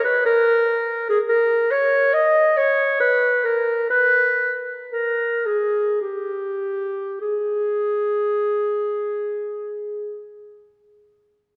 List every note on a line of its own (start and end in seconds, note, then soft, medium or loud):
0.04 0.23 B4 medium
0.26 1.06 A#4 medium
1.09 1.18 G#4 medium
1.28 1.72 A#4 medium
1.71 2.15 C#5 medium
2.13 2.58 D#5 medium
2.57 2.99 C#5 medium
3.00 3.46 B4 medium
3.45 3.89 A#4 medium
3.90 4.54 B4 medium
4.92 5.47 A#4 medium
5.46 6.00 G#4 medium
6.01 7.18 G4 medium
7.21 10.22 G#4 medium